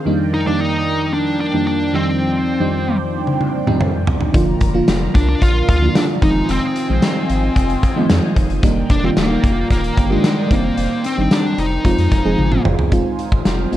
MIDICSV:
0, 0, Header, 1, 6, 480
1, 0, Start_track
1, 0, Tempo, 535714
1, 55, Time_signature, 4, 2, 24, 8
1, 12337, End_track
2, 0, Start_track
2, 0, Title_t, "Analog synth pad"
2, 0, Program_c, 0, 89
2, 0, Note_on_c, 0, 51, 84
2, 54, Note_on_c, 0, 70, 70
2, 54, Note_on_c, 0, 79, 87
2, 55, Note_on_c, 0, 74, 72
2, 56, Note_on_c, 0, 53, 75
2, 1718, Note_off_c, 0, 70, 0
2, 1740, Note_on_c, 0, 72, 74
2, 3858, Note_off_c, 0, 51, 0
2, 3858, Note_off_c, 0, 79, 0
2, 3860, Note_off_c, 0, 53, 0
2, 3876, Note_off_c, 0, 72, 0
2, 3894, Note_on_c, 0, 65, 79
2, 3894, Note_on_c, 0, 70, 72
2, 3896, Note_on_c, 0, 82, 88
2, 5539, Note_off_c, 0, 74, 0
2, 5558, Note_off_c, 0, 65, 0
2, 5558, Note_off_c, 0, 70, 0
2, 5559, Note_off_c, 0, 82, 0
2, 5576, Note_on_c, 0, 72, 73
2, 5577, Note_on_c, 0, 65, 81
2, 5579, Note_on_c, 0, 75, 77
2, 5579, Note_on_c, 0, 80, 88
2, 7714, Note_off_c, 0, 72, 0
2, 7715, Note_off_c, 0, 65, 0
2, 7715, Note_off_c, 0, 75, 0
2, 7715, Note_off_c, 0, 80, 0
2, 7734, Note_on_c, 0, 51, 80
2, 7734, Note_on_c, 0, 74, 74
2, 7735, Note_on_c, 0, 70, 74
2, 7736, Note_on_c, 0, 79, 85
2, 9398, Note_off_c, 0, 70, 0
2, 9416, Note_on_c, 0, 72, 76
2, 10586, Note_off_c, 0, 74, 0
2, 10586, Note_off_c, 0, 79, 0
2, 10620, Note_on_c, 0, 80, 81
2, 10621, Note_on_c, 0, 77, 72
2, 11539, Note_off_c, 0, 51, 0
2, 11554, Note_off_c, 0, 72, 0
2, 11568, Note_off_c, 0, 80, 0
2, 11569, Note_off_c, 0, 77, 0
2, 11583, Note_on_c, 0, 77, 66
2, 11583, Note_on_c, 0, 80, 84
2, 11585, Note_on_c, 0, 72, 70
2, 11586, Note_on_c, 0, 63, 72
2, 12337, Note_off_c, 0, 63, 0
2, 12337, Note_off_c, 0, 72, 0
2, 12337, Note_off_c, 0, 77, 0
2, 12337, Note_off_c, 0, 80, 0
2, 12337, End_track
3, 0, Start_track
3, 0, Title_t, "Lead electric guitar"
3, 0, Program_c, 1, 29
3, 303, Note_on_c, 1, 63, 107
3, 411, Note_off_c, 1, 63, 0
3, 421, Note_on_c, 1, 62, 96
3, 543, Note_off_c, 1, 62, 0
3, 543, Note_on_c, 1, 63, 99
3, 1014, Note_off_c, 1, 63, 0
3, 1018, Note_on_c, 1, 62, 93
3, 1240, Note_off_c, 1, 62, 0
3, 1259, Note_on_c, 1, 62, 101
3, 1488, Note_off_c, 1, 62, 0
3, 1499, Note_on_c, 1, 62, 103
3, 1737, Note_on_c, 1, 60, 82
3, 1744, Note_off_c, 1, 62, 0
3, 2660, Note_off_c, 1, 60, 0
3, 4616, Note_on_c, 1, 62, 95
3, 4727, Note_off_c, 1, 62, 0
3, 4737, Note_on_c, 1, 62, 97
3, 4858, Note_off_c, 1, 62, 0
3, 4858, Note_on_c, 1, 65, 105
3, 5090, Note_off_c, 1, 65, 0
3, 5100, Note_on_c, 1, 65, 103
3, 5340, Note_off_c, 1, 65, 0
3, 5344, Note_on_c, 1, 62, 101
3, 5407, Note_off_c, 1, 62, 0
3, 5582, Note_on_c, 1, 63, 99
3, 5821, Note_on_c, 1, 60, 82
3, 5826, Note_off_c, 1, 63, 0
3, 7222, Note_off_c, 1, 60, 0
3, 7982, Note_on_c, 1, 62, 90
3, 8102, Note_off_c, 1, 62, 0
3, 8103, Note_on_c, 1, 60, 83
3, 8148, Note_off_c, 1, 60, 0
3, 8223, Note_on_c, 1, 58, 81
3, 8666, Note_off_c, 1, 58, 0
3, 8706, Note_on_c, 1, 58, 88
3, 9064, Note_off_c, 1, 58, 0
3, 9068, Note_on_c, 1, 56, 85
3, 9422, Note_off_c, 1, 56, 0
3, 9425, Note_on_c, 1, 58, 98
3, 9907, Note_off_c, 1, 58, 0
3, 9910, Note_on_c, 1, 60, 91
3, 10148, Note_on_c, 1, 62, 96
3, 10150, Note_off_c, 1, 60, 0
3, 10388, Note_off_c, 1, 62, 0
3, 10392, Note_on_c, 1, 63, 102
3, 11307, Note_off_c, 1, 63, 0
3, 12337, End_track
4, 0, Start_track
4, 0, Title_t, "FM electric piano"
4, 0, Program_c, 2, 5
4, 0, Control_c, 2, 64, 127
4, 51, Note_on_c, 2, 41, 94
4, 51, Note_on_c, 2, 51, 85
4, 53, Note_on_c, 2, 55, 86
4, 56, Note_on_c, 2, 58, 84
4, 60, Note_on_c, 2, 62, 86
4, 60, Note_on_c, 2, 63, 100
4, 67, Control_c, 2, 64, 0
4, 239, Control_c, 2, 64, 127
4, 349, Note_off_c, 2, 41, 0
4, 349, Note_off_c, 2, 51, 0
4, 350, Note_off_c, 2, 55, 0
4, 351, Note_off_c, 2, 58, 0
4, 353, Note_off_c, 2, 62, 0
4, 353, Note_off_c, 2, 63, 0
4, 414, Note_on_c, 2, 41, 77
4, 416, Note_on_c, 2, 51, 73
4, 418, Note_on_c, 2, 55, 70
4, 419, Note_on_c, 2, 58, 71
4, 423, Note_on_c, 2, 74, 69
4, 425, Note_on_c, 2, 63, 83
4, 1203, Note_off_c, 2, 41, 0
4, 1204, Note_off_c, 2, 51, 0
4, 1205, Note_off_c, 2, 55, 0
4, 1205, Note_off_c, 2, 58, 0
4, 1208, Note_off_c, 2, 63, 0
4, 1208, Note_off_c, 2, 74, 0
4, 1375, Note_on_c, 2, 41, 73
4, 1377, Note_on_c, 2, 51, 67
4, 1379, Note_on_c, 2, 55, 68
4, 1380, Note_on_c, 2, 58, 68
4, 1382, Note_on_c, 2, 62, 70
4, 1385, Note_on_c, 2, 63, 81
4, 1723, Note_off_c, 2, 41, 0
4, 1724, Note_off_c, 2, 51, 0
4, 1726, Note_off_c, 2, 55, 0
4, 1731, Note_off_c, 2, 62, 0
4, 1733, Note_off_c, 2, 63, 0
4, 1734, Note_on_c, 2, 41, 81
4, 1734, Note_on_c, 2, 51, 77
4, 1737, Note_on_c, 2, 55, 73
4, 1738, Note_off_c, 2, 58, 0
4, 1739, Note_on_c, 2, 60, 74
4, 1742, Note_on_c, 2, 62, 72
4, 1744, Note_on_c, 2, 63, 93
4, 1746, Control_c, 2, 64, 0
4, 1892, Control_c, 2, 64, 127
4, 2227, Note_off_c, 2, 41, 0
4, 2228, Note_off_c, 2, 51, 0
4, 2229, Note_off_c, 2, 55, 0
4, 2230, Note_off_c, 2, 60, 0
4, 2231, Note_off_c, 2, 62, 0
4, 2232, Note_off_c, 2, 63, 0
4, 2324, Note_on_c, 2, 41, 87
4, 2327, Note_on_c, 2, 51, 81
4, 2330, Note_on_c, 2, 55, 83
4, 2331, Note_on_c, 2, 60, 82
4, 2335, Note_on_c, 2, 62, 85
4, 2335, Note_on_c, 2, 63, 98
4, 3118, Note_off_c, 2, 41, 0
4, 3120, Note_off_c, 2, 51, 0
4, 3121, Note_off_c, 2, 55, 0
4, 3122, Note_off_c, 2, 60, 0
4, 3123, Note_off_c, 2, 62, 0
4, 3124, Note_off_c, 2, 63, 0
4, 3285, Note_on_c, 2, 41, 91
4, 3286, Note_on_c, 2, 51, 80
4, 3289, Note_on_c, 2, 55, 83
4, 3291, Note_on_c, 2, 60, 82
4, 3294, Note_on_c, 2, 62, 85
4, 3295, Note_on_c, 2, 63, 99
4, 3783, Note_off_c, 2, 41, 0
4, 3784, Note_off_c, 2, 51, 0
4, 3785, Note_off_c, 2, 55, 0
4, 3786, Note_off_c, 2, 60, 0
4, 3787, Note_off_c, 2, 62, 0
4, 3788, Note_off_c, 2, 63, 0
4, 3881, Note_on_c, 2, 50, 92
4, 3886, Note_on_c, 2, 53, 88
4, 3887, Note_on_c, 2, 58, 84
4, 3891, Note_on_c, 2, 62, 83
4, 3893, Note_on_c, 2, 65, 98
4, 3908, Control_c, 2, 64, 0
4, 4044, Control_c, 2, 64, 127
4, 4184, Note_off_c, 2, 50, 0
4, 4186, Note_off_c, 2, 53, 0
4, 4187, Note_off_c, 2, 58, 0
4, 4189, Note_off_c, 2, 62, 0
4, 4190, Note_off_c, 2, 65, 0
4, 4243, Note_on_c, 2, 50, 86
4, 4246, Note_on_c, 2, 53, 83
4, 4248, Note_on_c, 2, 58, 85
4, 4251, Note_on_c, 2, 62, 79
4, 4254, Note_on_c, 2, 65, 98
4, 5038, Note_off_c, 2, 50, 0
4, 5039, Note_off_c, 2, 53, 0
4, 5040, Note_off_c, 2, 58, 0
4, 5042, Note_off_c, 2, 62, 0
4, 5043, Note_off_c, 2, 65, 0
4, 5208, Note_on_c, 2, 50, 77
4, 5210, Note_on_c, 2, 53, 71
4, 5213, Note_on_c, 2, 58, 68
4, 5217, Note_on_c, 2, 62, 67
4, 5218, Note_on_c, 2, 64, 70
4, 5274, Note_off_c, 2, 64, 0
4, 5275, Note_on_c, 2, 65, 87
4, 5563, Note_off_c, 2, 53, 0
4, 5570, Note_on_c, 2, 51, 81
4, 5571, Note_off_c, 2, 50, 0
4, 5574, Note_off_c, 2, 58, 0
4, 5574, Note_on_c, 2, 53, 77
4, 5576, Note_off_c, 2, 62, 0
4, 5578, Note_on_c, 2, 56, 78
4, 5580, Note_on_c, 2, 60, 72
4, 5584, Note_on_c, 2, 63, 93
4, 5585, Control_c, 2, 64, 0
4, 5605, Note_off_c, 2, 65, 0
4, 5733, Control_c, 2, 64, 127
4, 6065, Note_off_c, 2, 51, 0
4, 6067, Note_off_c, 2, 53, 0
4, 6069, Note_off_c, 2, 56, 0
4, 6070, Note_off_c, 2, 60, 0
4, 6072, Note_off_c, 2, 63, 0
4, 6171, Note_on_c, 2, 51, 75
4, 6173, Note_on_c, 2, 53, 71
4, 6176, Note_on_c, 2, 56, 70
4, 6180, Note_on_c, 2, 60, 70
4, 6182, Note_on_c, 2, 63, 83
4, 6962, Note_off_c, 2, 51, 0
4, 6963, Note_off_c, 2, 53, 0
4, 6964, Note_off_c, 2, 56, 0
4, 6966, Note_off_c, 2, 60, 0
4, 6967, Note_off_c, 2, 63, 0
4, 7132, Note_on_c, 2, 51, 89
4, 7132, Note_on_c, 2, 53, 88
4, 7136, Note_on_c, 2, 56, 88
4, 7139, Note_on_c, 2, 60, 82
4, 7140, Note_on_c, 2, 63, 98
4, 7626, Note_off_c, 2, 51, 0
4, 7626, Note_off_c, 2, 53, 0
4, 7629, Note_off_c, 2, 56, 0
4, 7630, Note_off_c, 2, 60, 0
4, 7631, Note_off_c, 2, 63, 0
4, 7734, Note_on_c, 2, 51, 88
4, 7735, Note_on_c, 2, 55, 84
4, 7738, Note_on_c, 2, 58, 89
4, 7741, Note_on_c, 2, 62, 83
4, 7743, Note_on_c, 2, 63, 109
4, 7745, Control_c, 2, 64, 0
4, 7894, Control_c, 2, 64, 127
4, 8030, Note_off_c, 2, 51, 0
4, 8031, Note_off_c, 2, 55, 0
4, 8033, Note_off_c, 2, 58, 0
4, 8034, Note_off_c, 2, 62, 0
4, 8035, Note_off_c, 2, 63, 0
4, 8093, Note_on_c, 2, 51, 81
4, 8095, Note_on_c, 2, 55, 75
4, 8100, Note_on_c, 2, 58, 71
4, 8101, Note_on_c, 2, 62, 72
4, 8104, Note_on_c, 2, 65, 85
4, 8883, Note_off_c, 2, 51, 0
4, 8884, Note_off_c, 2, 55, 0
4, 8886, Note_off_c, 2, 58, 0
4, 8887, Note_off_c, 2, 62, 0
4, 8888, Note_off_c, 2, 65, 0
4, 9049, Note_on_c, 2, 51, 76
4, 9053, Note_on_c, 2, 67, 71
4, 9055, Note_on_c, 2, 58, 68
4, 9059, Note_on_c, 2, 62, 71
4, 9062, Note_on_c, 2, 65, 83
4, 9399, Note_off_c, 2, 51, 0
4, 9406, Note_off_c, 2, 62, 0
4, 9410, Note_on_c, 2, 51, 85
4, 9413, Note_on_c, 2, 55, 75
4, 9414, Note_off_c, 2, 67, 0
4, 9415, Note_off_c, 2, 58, 0
4, 9415, Note_on_c, 2, 60, 75
4, 9417, Note_on_c, 2, 62, 73
4, 9418, Note_off_c, 2, 65, 0
4, 9421, Note_on_c, 2, 63, 85
4, 9427, Control_c, 2, 64, 0
4, 9576, Control_c, 2, 64, 127
4, 9905, Note_off_c, 2, 51, 0
4, 9907, Note_off_c, 2, 55, 0
4, 9908, Note_off_c, 2, 60, 0
4, 9909, Note_off_c, 2, 62, 0
4, 9911, Note_off_c, 2, 63, 0
4, 10011, Note_on_c, 2, 51, 76
4, 10014, Note_on_c, 2, 55, 74
4, 10015, Note_on_c, 2, 60, 70
4, 10019, Note_on_c, 2, 62, 68
4, 10021, Note_on_c, 2, 63, 84
4, 10606, Note_off_c, 2, 60, 0
4, 10607, Note_off_c, 2, 63, 0
4, 10611, Note_on_c, 2, 53, 80
4, 10613, Note_off_c, 2, 51, 0
4, 10614, Note_off_c, 2, 55, 0
4, 10614, Note_on_c, 2, 56, 74
4, 10617, Note_off_c, 2, 62, 0
4, 10617, Note_on_c, 2, 60, 72
4, 10618, Note_on_c, 2, 63, 68
4, 10622, Note_on_c, 2, 65, 89
4, 10627, Control_c, 2, 64, 0
4, 10801, Control_c, 2, 64, 127
4, 10909, Note_off_c, 2, 53, 0
4, 10910, Note_off_c, 2, 56, 0
4, 10912, Note_off_c, 2, 60, 0
4, 10912, Note_off_c, 2, 63, 0
4, 10914, Note_off_c, 2, 65, 0
4, 10969, Note_on_c, 2, 53, 93
4, 10972, Note_on_c, 2, 56, 83
4, 10974, Note_on_c, 2, 60, 82
4, 10978, Note_on_c, 2, 63, 81
4, 10980, Note_on_c, 2, 68, 100
4, 11465, Note_off_c, 2, 53, 0
4, 11467, Note_off_c, 2, 56, 0
4, 11468, Note_off_c, 2, 60, 0
4, 11470, Note_off_c, 2, 63, 0
4, 11471, Note_off_c, 2, 68, 0
4, 11571, Note_on_c, 2, 56, 84
4, 11574, Note_on_c, 2, 60, 76
4, 11579, Note_on_c, 2, 63, 78
4, 11581, Note_on_c, 2, 65, 99
4, 11587, Control_c, 2, 64, 0
4, 11755, Control_c, 2, 64, 127
4, 12165, Note_off_c, 2, 56, 0
4, 12166, Note_off_c, 2, 60, 0
4, 12168, Note_off_c, 2, 63, 0
4, 12169, Note_off_c, 2, 65, 0
4, 12294, Note_on_c, 2, 56, 79
4, 12295, Note_on_c, 2, 60, 70
4, 12299, Note_on_c, 2, 63, 78
4, 12303, Note_on_c, 2, 65, 92
4, 12337, Note_off_c, 2, 56, 0
4, 12337, Note_off_c, 2, 60, 0
4, 12337, Note_off_c, 2, 63, 0
4, 12337, Note_off_c, 2, 65, 0
4, 12337, End_track
5, 0, Start_track
5, 0, Title_t, "Sub bass"
5, 0, Program_c, 3, 38
5, 3892, Note_on_c, 3, 29, 116
5, 4073, Note_off_c, 3, 29, 0
5, 4132, Note_on_c, 3, 29, 102
5, 4313, Note_off_c, 3, 29, 0
5, 4373, Note_on_c, 3, 29, 110
5, 4554, Note_off_c, 3, 29, 0
5, 4614, Note_on_c, 3, 36, 98
5, 4794, Note_off_c, 3, 36, 0
5, 4855, Note_on_c, 3, 34, 105
5, 5035, Note_off_c, 3, 34, 0
5, 5095, Note_on_c, 3, 38, 87
5, 5275, Note_off_c, 3, 38, 0
5, 5577, Note_on_c, 3, 29, 100
5, 5756, Note_off_c, 3, 29, 0
5, 5816, Note_on_c, 3, 29, 117
5, 5906, Note_off_c, 3, 29, 0
5, 6179, Note_on_c, 3, 34, 91
5, 6267, Note_off_c, 3, 34, 0
5, 6538, Note_on_c, 3, 32, 92
5, 6717, Note_off_c, 3, 32, 0
5, 6774, Note_on_c, 3, 29, 103
5, 6954, Note_off_c, 3, 29, 0
5, 7257, Note_on_c, 3, 41, 101
5, 7346, Note_off_c, 3, 41, 0
5, 7495, Note_on_c, 3, 29, 95
5, 7585, Note_off_c, 3, 29, 0
5, 7614, Note_on_c, 3, 30, 100
5, 7704, Note_off_c, 3, 30, 0
5, 7734, Note_on_c, 3, 29, 104
5, 7914, Note_off_c, 3, 29, 0
5, 7972, Note_on_c, 3, 29, 110
5, 8153, Note_off_c, 3, 29, 0
5, 8215, Note_on_c, 3, 27, 98
5, 8395, Note_off_c, 3, 27, 0
5, 8455, Note_on_c, 3, 29, 103
5, 8635, Note_off_c, 3, 29, 0
5, 8695, Note_on_c, 3, 27, 102
5, 8875, Note_off_c, 3, 27, 0
5, 8938, Note_on_c, 3, 31, 95
5, 9117, Note_off_c, 3, 31, 0
5, 9415, Note_on_c, 3, 29, 108
5, 9595, Note_off_c, 3, 29, 0
5, 9655, Note_on_c, 3, 29, 113
5, 9745, Note_off_c, 3, 29, 0
5, 10017, Note_on_c, 3, 31, 84
5, 10106, Note_off_c, 3, 31, 0
5, 10376, Note_on_c, 3, 29, 93
5, 10556, Note_off_c, 3, 29, 0
5, 10616, Note_on_c, 3, 29, 108
5, 10706, Note_off_c, 3, 29, 0
5, 10734, Note_on_c, 3, 41, 99
5, 10824, Note_off_c, 3, 41, 0
5, 10857, Note_on_c, 3, 29, 91
5, 10946, Note_off_c, 3, 29, 0
5, 10978, Note_on_c, 3, 29, 95
5, 11067, Note_off_c, 3, 29, 0
5, 11098, Note_on_c, 3, 32, 100
5, 11277, Note_off_c, 3, 32, 0
5, 11339, Note_on_c, 3, 30, 99
5, 11428, Note_off_c, 3, 30, 0
5, 11577, Note_on_c, 3, 29, 108
5, 11667, Note_off_c, 3, 29, 0
5, 11935, Note_on_c, 3, 32, 93
5, 12025, Note_off_c, 3, 32, 0
5, 12060, Note_on_c, 3, 29, 97
5, 12238, Note_off_c, 3, 29, 0
5, 12299, Note_on_c, 3, 29, 87
5, 12337, Note_off_c, 3, 29, 0
5, 12337, End_track
6, 0, Start_track
6, 0, Title_t, "Drums"
6, 2932, Note_on_c, 9, 48, 57
6, 3021, Note_off_c, 9, 48, 0
6, 3052, Note_on_c, 9, 48, 57
6, 3141, Note_off_c, 9, 48, 0
6, 3291, Note_on_c, 9, 47, 64
6, 3380, Note_off_c, 9, 47, 0
6, 3410, Note_on_c, 9, 45, 90
6, 3500, Note_off_c, 9, 45, 0
6, 3649, Note_on_c, 9, 43, 106
6, 3739, Note_off_c, 9, 43, 0
6, 3768, Note_on_c, 9, 43, 95
6, 3858, Note_off_c, 9, 43, 0
6, 3890, Note_on_c, 9, 42, 91
6, 3892, Note_on_c, 9, 36, 115
6, 3980, Note_off_c, 9, 42, 0
6, 3981, Note_off_c, 9, 36, 0
6, 4127, Note_on_c, 9, 42, 86
6, 4131, Note_on_c, 9, 36, 97
6, 4217, Note_off_c, 9, 42, 0
6, 4221, Note_off_c, 9, 36, 0
6, 4370, Note_on_c, 9, 54, 71
6, 4372, Note_on_c, 9, 38, 106
6, 4374, Note_on_c, 9, 42, 95
6, 4460, Note_off_c, 9, 54, 0
6, 4461, Note_off_c, 9, 38, 0
6, 4463, Note_off_c, 9, 42, 0
6, 4614, Note_on_c, 9, 36, 98
6, 4615, Note_on_c, 9, 42, 73
6, 4703, Note_off_c, 9, 36, 0
6, 4705, Note_off_c, 9, 42, 0
6, 4855, Note_on_c, 9, 36, 86
6, 4855, Note_on_c, 9, 42, 84
6, 4944, Note_off_c, 9, 36, 0
6, 4944, Note_off_c, 9, 42, 0
6, 5096, Note_on_c, 9, 36, 101
6, 5097, Note_on_c, 9, 42, 84
6, 5186, Note_off_c, 9, 36, 0
6, 5187, Note_off_c, 9, 42, 0
6, 5335, Note_on_c, 9, 38, 115
6, 5335, Note_on_c, 9, 54, 57
6, 5336, Note_on_c, 9, 42, 101
6, 5425, Note_off_c, 9, 38, 0
6, 5425, Note_off_c, 9, 54, 0
6, 5426, Note_off_c, 9, 42, 0
6, 5575, Note_on_c, 9, 36, 113
6, 5576, Note_on_c, 9, 42, 86
6, 5665, Note_off_c, 9, 36, 0
6, 5665, Note_off_c, 9, 42, 0
6, 5814, Note_on_c, 9, 42, 96
6, 5904, Note_off_c, 9, 42, 0
6, 6055, Note_on_c, 9, 42, 85
6, 6144, Note_off_c, 9, 42, 0
6, 6291, Note_on_c, 9, 54, 71
6, 6293, Note_on_c, 9, 38, 109
6, 6295, Note_on_c, 9, 42, 93
6, 6381, Note_off_c, 9, 54, 0
6, 6383, Note_off_c, 9, 38, 0
6, 6385, Note_off_c, 9, 42, 0
6, 6537, Note_on_c, 9, 42, 80
6, 6627, Note_off_c, 9, 42, 0
6, 6775, Note_on_c, 9, 36, 81
6, 6775, Note_on_c, 9, 42, 84
6, 6864, Note_off_c, 9, 36, 0
6, 6864, Note_off_c, 9, 42, 0
6, 6897, Note_on_c, 9, 42, 61
6, 6986, Note_off_c, 9, 42, 0
6, 7017, Note_on_c, 9, 36, 91
6, 7018, Note_on_c, 9, 42, 82
6, 7106, Note_off_c, 9, 36, 0
6, 7108, Note_off_c, 9, 42, 0
6, 7254, Note_on_c, 9, 38, 109
6, 7254, Note_on_c, 9, 42, 94
6, 7254, Note_on_c, 9, 54, 59
6, 7343, Note_off_c, 9, 38, 0
6, 7343, Note_off_c, 9, 54, 0
6, 7344, Note_off_c, 9, 42, 0
6, 7494, Note_on_c, 9, 36, 90
6, 7494, Note_on_c, 9, 42, 85
6, 7584, Note_off_c, 9, 36, 0
6, 7584, Note_off_c, 9, 42, 0
6, 7616, Note_on_c, 9, 42, 60
6, 7705, Note_off_c, 9, 42, 0
6, 7732, Note_on_c, 9, 42, 92
6, 7733, Note_on_c, 9, 36, 114
6, 7822, Note_off_c, 9, 42, 0
6, 7823, Note_off_c, 9, 36, 0
6, 7971, Note_on_c, 9, 42, 84
6, 7974, Note_on_c, 9, 36, 102
6, 8061, Note_off_c, 9, 42, 0
6, 8063, Note_off_c, 9, 36, 0
6, 8213, Note_on_c, 9, 54, 69
6, 8214, Note_on_c, 9, 38, 105
6, 8216, Note_on_c, 9, 42, 98
6, 8302, Note_off_c, 9, 54, 0
6, 8304, Note_off_c, 9, 38, 0
6, 8306, Note_off_c, 9, 42, 0
6, 8455, Note_on_c, 9, 36, 91
6, 8457, Note_on_c, 9, 42, 81
6, 8544, Note_off_c, 9, 36, 0
6, 8547, Note_off_c, 9, 42, 0
6, 8695, Note_on_c, 9, 36, 85
6, 8695, Note_on_c, 9, 42, 85
6, 8785, Note_off_c, 9, 36, 0
6, 8785, Note_off_c, 9, 42, 0
6, 8819, Note_on_c, 9, 42, 59
6, 8908, Note_off_c, 9, 42, 0
6, 8937, Note_on_c, 9, 36, 90
6, 8939, Note_on_c, 9, 42, 82
6, 9027, Note_off_c, 9, 36, 0
6, 9029, Note_off_c, 9, 42, 0
6, 9175, Note_on_c, 9, 38, 117
6, 9175, Note_on_c, 9, 54, 60
6, 9176, Note_on_c, 9, 42, 97
6, 9264, Note_off_c, 9, 38, 0
6, 9265, Note_off_c, 9, 42, 0
6, 9265, Note_off_c, 9, 54, 0
6, 9415, Note_on_c, 9, 36, 109
6, 9416, Note_on_c, 9, 42, 85
6, 9505, Note_off_c, 9, 36, 0
6, 9506, Note_off_c, 9, 42, 0
6, 9654, Note_on_c, 9, 42, 90
6, 9744, Note_off_c, 9, 42, 0
6, 9894, Note_on_c, 9, 42, 85
6, 9984, Note_off_c, 9, 42, 0
6, 10134, Note_on_c, 9, 54, 72
6, 10136, Note_on_c, 9, 38, 109
6, 10138, Note_on_c, 9, 42, 98
6, 10224, Note_off_c, 9, 54, 0
6, 10225, Note_off_c, 9, 38, 0
6, 10227, Note_off_c, 9, 42, 0
6, 10379, Note_on_c, 9, 42, 77
6, 10469, Note_off_c, 9, 42, 0
6, 10615, Note_on_c, 9, 42, 81
6, 10616, Note_on_c, 9, 36, 82
6, 10704, Note_off_c, 9, 42, 0
6, 10706, Note_off_c, 9, 36, 0
6, 10738, Note_on_c, 9, 42, 60
6, 10828, Note_off_c, 9, 42, 0
6, 10855, Note_on_c, 9, 42, 81
6, 10857, Note_on_c, 9, 36, 94
6, 10945, Note_off_c, 9, 42, 0
6, 10946, Note_off_c, 9, 36, 0
6, 11096, Note_on_c, 9, 48, 59
6, 11186, Note_off_c, 9, 48, 0
6, 11215, Note_on_c, 9, 47, 67
6, 11305, Note_off_c, 9, 47, 0
6, 11336, Note_on_c, 9, 45, 101
6, 11425, Note_off_c, 9, 45, 0
6, 11457, Note_on_c, 9, 43, 98
6, 11547, Note_off_c, 9, 43, 0
6, 11574, Note_on_c, 9, 42, 82
6, 11576, Note_on_c, 9, 36, 108
6, 11664, Note_off_c, 9, 42, 0
6, 11665, Note_off_c, 9, 36, 0
6, 11817, Note_on_c, 9, 42, 82
6, 11906, Note_off_c, 9, 42, 0
6, 11935, Note_on_c, 9, 36, 101
6, 12024, Note_off_c, 9, 36, 0
6, 12055, Note_on_c, 9, 38, 100
6, 12056, Note_on_c, 9, 42, 92
6, 12144, Note_off_c, 9, 38, 0
6, 12146, Note_off_c, 9, 42, 0
6, 12299, Note_on_c, 9, 42, 72
6, 12337, Note_off_c, 9, 42, 0
6, 12337, End_track
0, 0, End_of_file